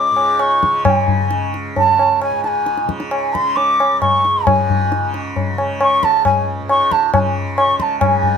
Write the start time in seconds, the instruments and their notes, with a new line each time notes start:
Already playing: tanpura C#2 G#2 C#3, bansuri D6
0.11 tanpura G#2
0.16 tabla na
0.39 bansuri C#6, tabla na
0.63 tanpura C#3, tabla ke
0.85 bansuri G#5, tabla na, tabla ge
1.08 tabla ge
1.22 tanpura C#3
1.31 tabla te
1.54 tabla te
1.76 tanpura C#2, bansuri A5, tabla tin, tabla ge
1.99 tabla na
2.22 bansuri G#5, tabla na
2.30 tanpura G#2
2.43 bansuri G#5 A5, tabla te
2.66 tabla te
2.77 tabla te
2.85 tanpura C#3
2.89 tabla ke
3.00 tabla te
3.11 bansuri G#5, tabla na
3.33 bansuri C6, tabla ke
3.39 tanpura C#3
3.56 bansuri D6, tabla tin
3.80 tabla na
3.92 tanpura C#2
4.01 bansuri C#6, tabla na, tabla ge
4.25 tabla te
4.46 tanpura G#2, bansuri G#5, tabla na, tabla ge
4.70 tabla ge
4.92 tabla te
4.99 tanpura C#3
5.14 tabla te
5.36 tabla tin, tabla ge
5.53 tanpura C#3
5.58 tabla na
5.81 bansuri C#6, tabla na
6.03 bansuri A5, tabla ke
6.07 tanpura C#2
6.25 bansuri G#5, tabla na, tabla ge
6.60 tanpura G#2
6.69 bansuri C#6, tabla na
6.91 bansuri A5, tabla ke
7.13 tanpura C#3, bansuri G#5, tabla na, tabla ge
7.57 bansuri C#6, tabla na
7.66 tanpura C#3
7.78 bansuri A5 C6, tabla ke
7.99 tanpura G#2, bansuri G#5, tabla na, tabla ge
8.23 tabla ge